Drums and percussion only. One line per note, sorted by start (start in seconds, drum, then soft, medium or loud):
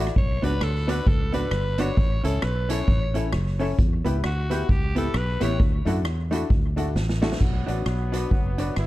0.07 cross-stick medium
0.16 kick loud
0.44 closed hi-hat medium
0.61 cross-stick loud
0.89 closed hi-hat loud
1.07 kick loud
1.33 closed hi-hat medium
1.51 cross-stick loud
1.78 closed hi-hat medium
1.97 kick loud
2.25 closed hi-hat medium
2.42 cross-stick loud
2.70 closed hi-hat loud
2.88 kick loud
3.15 closed hi-hat medium
3.33 cross-stick loud
3.60 open hi-hat medium
3.78 kick loud
3.78 hi-hat pedal medium
4.06 closed hi-hat loud
4.24 cross-stick loud
4.51 closed hi-hat loud
4.69 kick loud
4.96 closed hi-hat medium
5.14 cross-stick loud
5.41 cross-stick medium
5.41 closed hi-hat loud
5.60 kick loud
5.87 closed hi-hat medium
6.05 cross-stick loud
6.32 closed hi-hat loud
6.50 kick loud
6.78 closed hi-hat medium
6.96 snare medium
7.09 snare medium
7.23 snare loud
7.32 snare medium
7.41 kick loud
7.41 crash medium
7.68 closed hi-hat medium
7.86 cross-stick loud
8.13 closed hi-hat loud
8.31 kick loud
8.58 closed hi-hat medium
8.76 cross-stick medium